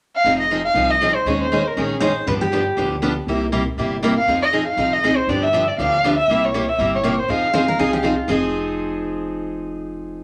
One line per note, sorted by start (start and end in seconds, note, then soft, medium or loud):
0.16 0.38 F5 loud
0.24 0.65 F1 medium
0.24 0.43 F3 medium
0.24 0.43 C4 medium
0.24 0.43 D#4 medium
0.24 0.43 G#4 medium
0.40 0.63 D#5 medium
0.51 0.61 F3 medium
0.51 0.61 C4 medium
0.51 0.61 D#4 medium
0.51 0.61 G#4 medium
0.65 0.92 F5 medium
0.74 1.15 C2 medium
0.74 0.93 F3 medium
0.74 0.94 C4 medium
0.74 0.94 D#4 medium
0.74 0.94 G#4 medium
0.90 1.17 D#5 medium
1.01 1.11 F3 medium
1.01 1.11 C4 medium
1.01 1.11 D#4 medium
1.01 1.12 G#4 medium
1.15 1.29 C5 medium
1.25 1.66 D#2 medium
1.25 1.44 D#3 medium
1.25 1.44 G#3 medium
1.25 1.44 C#4 medium
1.25 1.45 D#4 medium
1.25 1.45 G#4 medium
1.25 1.40 C#5 medium
1.41 1.69 C5 medium
1.52 1.61 D#3 medium
1.52 1.61 G#3 medium
1.52 1.62 C#4 medium
1.52 1.62 D#4 medium
1.52 1.62 G#4 medium
1.67 1.80 A#4 medium
1.77 2.17 A#1 medium
1.77 1.94 D#3 medium
1.77 1.94 G#3 medium
1.77 1.95 C#4 medium
1.77 1.95 D#4 medium
1.77 1.95 G#4 medium
1.77 2.16 G#4 medium
2.00 2.11 D#3 medium
2.00 2.11 G#3 medium
2.00 2.11 C#4 medium
2.00 2.12 D#4 loud
2.00 2.12 G#4 medium
2.00 2.27 C5 medium
2.27 2.67 G2 medium
2.27 2.44 D3 medium
2.27 2.45 F3 medium
2.27 2.45 B3 medium
2.27 2.45 D4 medium
2.27 2.45 G4 medium
2.27 2.32 B4 loud
2.41 2.87 G4 medium
2.52 2.62 D3 medium
2.52 2.62 F3 medium
2.52 2.62 B3 medium
2.52 2.62 D4 medium
2.52 2.63 G4 medium
2.77 3.17 D2 medium
2.77 2.95 D3 medium
2.77 2.95 F3 medium
2.77 2.95 B3 medium
2.77 2.95 D4 medium
2.77 2.96 G4 medium
3.02 3.12 D3 medium
3.02 3.12 F3 medium
3.02 3.12 B3 medium
3.02 3.12 D4 medium
3.02 3.13 G4 medium
3.27 3.67 C2 medium
3.27 3.45 C3 medium
3.27 3.46 G3 medium
3.27 3.46 A#3 medium
3.27 3.46 E4 medium
3.27 3.46 G4 medium
3.52 3.62 C3 medium
3.52 3.62 G3 medium
3.52 3.62 A#3 medium
3.52 3.62 E4 medium
3.52 3.62 G4 medium
3.77 4.17 G1 medium
3.77 3.95 C3 medium
3.77 3.96 G3 medium
3.77 3.96 A#3 medium
3.77 3.96 E4 medium
3.77 3.96 G4 medium
4.03 4.12 C3 medium
4.03 4.13 G3 medium
4.03 4.13 A#3 medium
4.03 4.13 E4 medium
4.03 4.13 G4 medium
4.17 4.40 F5 loud
4.27 4.67 F2 medium
4.27 4.45 F3 medium
4.27 4.46 C4 medium
4.27 4.46 D#4 medium
4.27 4.46 G#4 medium
4.42 4.65 D#5 medium
4.53 4.63 F3 medium
4.53 4.63 C4 medium
4.53 4.63 D#4 medium
4.53 4.63 G#4 medium
4.68 4.94 F5 medium
4.77 5.17 C2 medium
4.77 4.96 F3 medium
4.77 4.96 C4 medium
4.77 4.96 D#4 medium
4.77 4.96 G#4 medium
4.93 5.18 D#5 medium
5.03 5.13 F3 medium
5.03 5.13 C4 medium
5.03 5.14 D#4 medium
5.03 5.14 G#4 medium
5.17 5.30 C5 medium
5.27 5.68 G2 medium
5.27 5.46 D3 medium
5.27 5.47 F3 medium
5.27 5.47 B3 medium
5.27 5.47 D4 medium
5.27 5.47 G4 medium
5.27 5.44 D5 medium
5.43 5.69 E5 medium
5.53 5.63 D3 medium
5.53 5.63 F3 medium
5.53 5.64 B3 medium
5.53 5.64 D4 medium
5.53 5.64 G4 medium
5.68 5.79 D5 medium
5.78 6.18 D2 medium
5.78 5.96 D3 medium
5.78 5.97 F3 medium
5.78 5.97 B3 medium
5.78 5.97 D4 medium
5.78 5.97 G4 medium
5.78 6.15 F5 loud
6.04 6.14 D3 medium
6.04 6.14 F3 medium
6.04 6.14 B3 medium
6.04 6.14 D4 medium
6.04 6.14 G4 medium
6.19 6.46 E5 loud
6.28 6.68 C2 medium
6.28 6.47 C3 medium
6.28 6.47 G3 medium
6.28 6.47 A#3 medium
6.28 6.48 E4 medium
6.28 6.48 G4 medium
6.45 6.70 C#5 medium
6.54 6.64 C3 medium
6.54 6.64 G3 medium
6.54 6.64 A#3 medium
6.54 6.64 E4 medium
6.54 6.64 G4 medium
6.69 6.93 E5 medium
6.78 7.19 G1 medium
6.78 6.97 C3 medium
6.78 6.97 G3 medium
6.78 6.97 A#3 medium
6.78 6.97 E4 medium
6.78 6.97 G4 medium
6.95 7.20 C#5 medium
7.03 7.14 C3 medium
7.03 7.14 G3 medium
7.03 7.14 A#3 medium
7.03 7.14 E4 medium
7.03 7.14 G4 loud
7.19 7.32 C5 medium
7.28 7.69 F2 medium
7.28 7.46 F3 medium
7.28 7.47 C4 medium
7.28 7.47 D#4 medium
7.28 7.47 G#4 medium
7.28 8.05 F5 medium
7.53 7.64 F3 medium
7.53 7.64 C4 medium
7.53 7.64 D#4 medium
7.53 7.64 G#4 medium
7.53 7.58 C5 medium
7.68 7.79 A#4 medium
7.78 8.19 C2 medium
7.78 7.97 F3 medium
7.78 7.97 C4 medium
7.78 7.97 D#4 medium
7.78 7.93 G#4 medium
7.78 7.97 G#4 medium
7.93 8.05 G4 medium
8.03 8.13 F3 medium
8.03 8.14 C4 medium
8.03 8.14 D#4 medium
8.03 8.27 F4 medium
8.03 8.14 G#4 medium
8.28 10.24 F1 medium
8.28 10.24 F3 medium
8.28 10.24 C4 medium
8.28 10.24 D#4 medium
8.28 10.24 G#4 medium